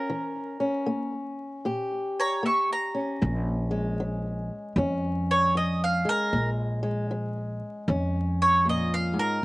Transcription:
Already playing: steel-string acoustic guitar C#4, mandolin A#4
0.09 steel-string acoustic guitar E3
0.60 steel-string acoustic guitar C#4
0.86 steel-string acoustic guitar A#3
1.65 steel-string acoustic guitar A#2 G4
2.20 mandolin C#5 A#5
2.43 steel-string acoustic guitar A#3, mandolin E5 C#6
2.73 mandolin A#5
2.95 steel-string acoustic guitar C#4
3.22 upright bass A#1, steel-string acoustic guitar A#2
3.71 steel-string acoustic guitar G#3
4.00 steel-string acoustic guitar F3
4.76 upright bass F2, steel-string acoustic guitar F2 C#4
5.31 mandolin C#5
5.55 steel-string acoustic guitar F3, mandolin D#5
5.84 mandolin F5
6.05 steel-string acoustic guitar G#3, mandolin A#4
6.33 upright bass A#1, steel-string acoustic guitar A#2
6.83 steel-string acoustic guitar G#3
7.11 steel-string acoustic guitar F3
7.88 upright bass F2, steel-string acoustic guitar F2 C#4
8.42 mandolin C#5
8.66 steel-string acoustic guitar A#2, mandolin D#5
8.94 mandolin F5
9.13 steel-string acoustic guitar G#2
9.19 mandolin A#4

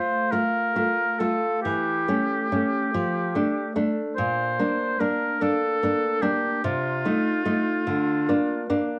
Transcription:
Already playing: nylon-string guitar A3 F4, oboe C5
0.31 nylon-string guitar A3 F4, oboe A#4
0.76 nylon-string guitar A3 F4
1.19 nylon-string guitar A3 F4, oboe A4
1.62 nylon-string guitar E3, oboe G4
2.08 nylon-string guitar A3 C#4
2.52 nylon-string guitar A3 C#4
2.94 nylon-string guitar F3
3.35 nylon-string guitar A3 D4
3.76 nylon-string guitar A3 D4
4.16 nylon-string guitar A#2, oboe C5
4.59 nylon-string guitar A#3 D4
5.00 nylon-string guitar A#3 D4, oboe A#4
5.41 nylon-string guitar A#3 D4, oboe A4
5.83 nylon-string guitar A#3 D4
6.22 nylon-string guitar A#3 D4, oboe G4
6.64 nylon-string guitar C3, oboe F4
7.05 nylon-string guitar A3 D#4
7.45 nylon-string guitar A3 D#4
7.87 nylon-string guitar D3
8.29 nylon-string guitar A#3 D4
8.70 nylon-string guitar A#3 D4

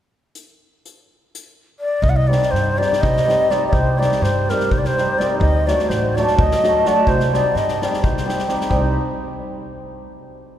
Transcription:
0.35 closed hi-hat
0.85 closed hi-hat
1.35 closed hi-hat
1.80 ney D5
2.02 upright bass C2, ney D#5, kick
2.09 ney F#5
2.16 ney D#5
2.27 hammered dulcimer G3 C4 D#4, ney D5
2.32 hammered dulcimer G4, snare
2.43 snare
2.51 upright bass G2, ney C5
2.55 snare
2.78 hammered dulcimer G3 C4 D#4 G4, ney D5, snare
2.93 snare
3.01 upright bass C2, ney D#5, kick
3.17 snare
3.27 hammered dulcimer G3 C4 D#4 G4, snare
3.49 hammered dulcimer G3 C4 D#4 G4, ney D5, snare
3.68 ney D5
3.73 upright bass C2, ney C5, kick
3.99 hammered dulcimer G3 C4 D#4 G4, ney D5, snare
4.12 snare
4.21 upright bass G2, ney C5, snare
4.49 hammered dulcimer G3 C4 D#4 G4, ney A#4, snare
4.60 snare
4.71 upright bass C2, ney C5, kick
4.78 ney D5
4.85 ney C5, snare
4.97 hammered dulcimer G3 C4 D#4 G4, snare
5.18 hammered dulcimer G3 C4 D#4 G4, ney D5, snare
5.40 upright bass D2, ney D#5, kick
5.67 hammered dulcimer F#3 A3 D4 F#4, ney D5, snare
5.79 snare
5.89 upright bass A1, ney C5, snare
6.16 hammered dulcimer F#3 A3 D4 F#4, ney D5, snare
6.27 snare
6.38 upright bass D2, ney D#5, kick
6.51 snare
6.63 hammered dulcimer F#3 A3 D4 F#4, snare
6.85 hammered dulcimer F#3 A3 D4 F#4, ney D5, snare
7.07 upright bass C2, ney C5, kick
7.20 snare
7.32 hammered dulcimer G3 C4 D#4 G4, ney D5, snare
7.55 upright bass G2, ney D#5, snare
7.68 snare
7.82 hammered dulcimer G3 C4 D#4 G4, ney D5, snare
7.94 snare
8.04 upright bass C2, ney C5, kick
8.17 snare
8.26 hammered dulcimer G3 C4 D#4 G4, snare
8.39 snare
8.47 hammered dulcimer G3 C4 D#4 G4, snare
8.61 snare
8.69 upright bass C2, hammered dulcimer G3 C4 D#4 G4, ney C5, kick

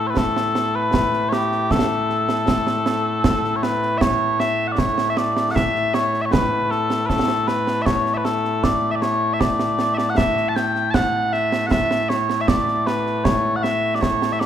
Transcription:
Already playing: bagpipes A2 A3
0.07 bagpipes B4 C#5
0.17 bagpipes A4, concert bass drum, snare
0.36 snare
0.55 snare
0.75 bagpipes B4
0.94 concert bass drum, snare
1.13 snare
1.29 bagpipes G4 C#5, snare
1.52 snare
1.71 bagpipes A4, concert bass drum, snare
2.09 snare
2.29 snare
2.48 concert bass drum, snare
2.67 snare
2.86 snare
3.24 concert bass drum, snare
3.44 snare
3.56 bagpipes C#5
3.63 bagpipes B4, snare
3.82 snare
3.98 bagpipes C#5 E5, concert bass drum, snare
4.40 bagpipes E5, snare
4.68 bagpipes F#5
4.72 bagpipes D5
4.78 bagpipes C#5, concert bass drum, snare
4.98 snare
5.10 bagpipes E5
5.17 bagpipes D5, snare
5.37 snare
5.51 bagpipes F#5
5.55 bagpipes E5, concert bass drum, snare
5.75 snare
5.94 bagpipes C#5, snare
6.14 snare
6.22 bagpipes C#5 E5
6.32 bagpipes B4, concert bass drum, snare
6.71 bagpipes A4, snare
6.90 snare
7.06 bagpipes A4 B4, concert bass drum, snare
7.28 snare
7.47 bagpipes B4, snare
7.67 snare
7.82 bagpipes C#5 E5
7.86 concert bass drum, snare
8.06 snare
8.14 bagpipes B4 E5
8.25 bagpipes A4, snare
8.45 snare
8.64 bagpipes D5, concert bass drum, snare
8.91 bagpipes E5
8.96 bagpipes D5
9.02 bagpipes C#5, snare
9.34 bagpipes E5
9.40 bagpipes D5, concert bass drum, snare
9.60 snare
9.79 snare
9.94 bagpipes D5 E5
9.98 snare
10.10 bagpipes F#5
10.17 bagpipes E5, concert bass drum, snare
10.37 snare
10.49 bagpipes A5
10.56 bagpipes G5, snare
10.75 snare
10.91 bagpipes F#5 A5, concert bass drum, snare
11.33 bagpipes E5, snare
11.52 snare
11.67 bagpipes F#5
11.71 bagpipes E5, concert bass drum, snare
11.91 snare
12.09 bagpipes C#5, snare
12.30 snare
12.41 bagpipes E5
12.48 bagpipes D5, concert bass drum, snare
12.68 snare
12.87 bagpipes B4, snare
13.06 snare
13.24 bagpipes C#5, concert bass drum, snare
13.56 bagpipes F#5
13.63 bagpipes E5, snare
13.95 bagpipes D5
14.01 bagpipes C#5, concert bass drum, snare
14.22 snare
14.33 bagpipes E5
14.40 bagpipes D5, snare

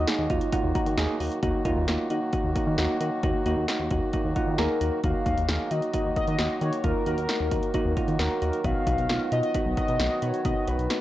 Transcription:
Already playing: harmonium D#3 F#3 A#3 F#4, soft synth lead D#5
0.07 synth keys A#3 D#4 G#4, synth arpeggio sound D#4, snare, closed hi-hat
0.19 analog synth bass D#2
0.30 analog synth bass D#2, synth keys A#3 D#4 F4, synth arpeggio sound F#4, kick, closed hi-hat
0.41 closed hi-hat
0.52 synth keys A#3 D#4 F4, synth arpeggio sound F#5, kick, closed hi-hat
0.64 analog synth bass D#2
0.75 synth keys A#3 D#4 F#4, synth arpeggio sound A#5, kick, closed hi-hat
0.86 analog synth bass D#3, closed hi-hat
0.98 analog synth bass D#2, synth keys A#3 D#4 G#4, synth arpeggio sound D#6, snare, closed hi-hat
1.20 analog synth bass D#2, synth keys A#3 D#4 F#4, open hi-hat
1.32 closed hi-hat
1.43 analog synth bass D#2, harmonium D#3 F#3 A#3 F#4, synth keys A#3 D#4 F#4, kick, closed hi-hat
1.65 analog synth bass D#2, synth keys A#3 D#4 F4, kick, closed hi-hat
1.77 analog synth bass D#2
1.88 analog synth bass D#2, synth keys A#3 D#4 F4, snare, closed hi-hat
2.10 analog synth bass D#3, synth keys A#3 D#4 F#4, closed hi-hat
2.33 synth keys A#3 D#4 F#4, kick, closed hi-hat
2.44 analog synth bass D#2
2.55 synth keys A#3 D#4 F#4, kick, closed hi-hat
2.67 analog synth bass D#3
2.78 analog synth bass D#2, synth keys A#3 D#4 F#4, snare, closed hi-hat
3.01 analog synth bass D#3, synth keys A#3 D#4 F#4, closed hi-hat
3.23 analog synth bass D#2, synth keys A#3 D#4 F#4, kick, closed hi-hat
3.46 analog synth bass D#2, synth keys A#3 D#4 F#4, closed hi-hat
3.57 analog synth bass D#2
3.68 synth keys A#3 D#4 F#4, snare, closed hi-hat
3.80 analog synth bass D#2
3.91 analog synth bass D#2, synth keys A#3 D#4 F#4, kick, closed hi-hat
4.13 synth keys A#3 D#4 F#4, kick, closed hi-hat
4.25 analog synth bass D#2
4.36 synth keys A#3 D#4 F4 F#5, kick, closed hi-hat
4.47 analog synth bass D#3
4.58 analog synth bass D#2, synth keys A#3 D#4 G#4 A#5, soft synth lead A#4, snare, closed hi-hat
4.81 analog synth bass D#2, synth keys A#3 D#4 F#4, closed hi-hat
5.04 analog synth bass D#2, harmonium D#3 F#3 A#3 F#4, synth keys A#3 D#4 F#4, soft synth lead F5, kick, closed hi-hat
5.26 analog synth bass D#2, synth keys A#3 D#4 F#4, kick, closed hi-hat
5.37 analog synth bass D#2, closed hi-hat
5.49 analog synth bass D#2, synth keys A#3 D#4 G#4, snare, closed hi-hat
5.71 analog synth bass D#3, synth keys A#3 D#4 F#4, soft synth lead D#5, closed hi-hat
5.82 closed hi-hat
5.94 synth keys A#3 D#4 F#4, kick, closed hi-hat
6.05 analog synth bass D#2
6.16 synth keys A#3 D#4 F#4, soft synth lead D#5, kick, closed hi-hat
6.27 analog synth bass D#3, closed hi-hat
6.39 analog synth bass D#2, synth keys A#3 D#4 F#4, snare, closed hi-hat
6.61 analog synth bass D#3, synth keys A#3 D#4 F#4, soft synth lead C#5, closed hi-hat
6.73 closed hi-hat
6.84 analog synth bass D#2, synth keys A#3 D#4 F4, soft synth lead A#4, kick, closed hi-hat
7.06 analog synth bass D#2, synth keys A#3 D#4 F#4, soft synth lead A#4, closed hi-hat
7.18 analog synth bass D#2, closed hi-hat
7.29 synth keys A#3 D#4 F#4, snare, closed hi-hat
7.40 analog synth bass D#2
7.51 analog synth bass D#2, synth keys A#3 D#4 F#4, kick, closed hi-hat
7.63 closed hi-hat
7.74 synth keys A#3 D#4 F#4, kick, closed hi-hat
7.85 analog synth bass D#2
7.97 synth keys A#3 D#4 F4, kick, closed hi-hat
8.08 analog synth bass D#3, closed hi-hat
8.19 analog synth bass D#2, synth keys A#3 D#4 F#4, soft synth lead A#4, snare, closed hi-hat
8.42 analog synth bass D#2, synth keys A#3 D#4 F#4, closed hi-hat
8.53 closed hi-hat
8.64 analog synth bass B1, synth keys B3 D#4 F#4, harmonium B3 F#4, soft synth lead F5, kick, closed hi-hat
8.87 analog synth bass B1, synth keys B3 D#4 F#4, kick, closed hi-hat
8.98 analog synth bass B1, closed hi-hat
9.09 analog synth bass B1, synth keys B3 D#4 F4, snare, closed hi-hat
9.32 analog synth bass B2, synth keys B3 D#4 F4, soft synth lead D#5, closed hi-hat
9.43 closed hi-hat
9.54 synth keys B3 D#4 F#4, kick, closed hi-hat
9.66 analog synth bass B1
9.77 synth keys B3 D#4 F#4, soft synth lead D#5, kick, closed hi-hat
9.88 analog synth bass B2, closed hi-hat
10.00 analog synth bass B1, synth keys B3 D#4 F#4, snare, closed hi-hat
10.22 analog synth bass B2, synth keys B3 D#4 F#4, soft synth lead C#5, closed hi-hat
10.34 closed hi-hat
10.45 analog synth bass B1, synth keys B3 D#4 F#4, soft synth lead D#5, kick, closed hi-hat
10.67 analog synth bass B1, synth keys B3 D#4 F#4, soft synth lead B4, closed hi-hat
10.79 analog synth bass B1, closed hi-hat
10.90 synth keys B3 D#4 F#4, snare, closed hi-hat

